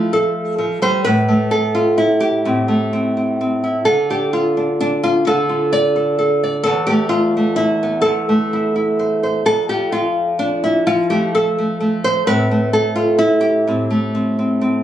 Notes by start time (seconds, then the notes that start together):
Already playing: F3 A3 E4 F4
0.13 A4
0.58 F3
0.82 G3 C5
1.04 A2 B4
1.28 A3
1.51 A4
1.75 F4
1.98 E4
2.20 G4
2.45 A2 C4
2.68 A3
2.93 C4
3.17 C4
3.41 C4
3.64 E4
3.85 D3 A4
4.10 D4 G4
4.33 F4
4.57 D4
4.80 D4
5.03 F4
5.27 D3 A4
5.49 F4
5.73 D5
5.96 A4
6.19 A4
6.44 D5
6.63 E2 A4
6.87 A3 G4
7.09 F4
7.37 A3
7.56 E4
7.83 B3
8.02 E2 A4
8.29 A3
8.53 E4
8.76 E4
8.99 C5
9.23 C5
9.46 F2 A4
9.69 F3 G4
9.92 F4
10.39 D4
10.64 E4
10.87 F3 F4
11.10 A3 G4
11.35 A4
11.58 A3
11.80 A3
12.04 C5
12.27 A2 A3 C4 B4
12.51 A3
12.73 A4
12.96 F4
13.19 E4
13.41 G4
13.67 A2 C4
13.90 A3
14.15 C4
14.39 C4
14.61 C4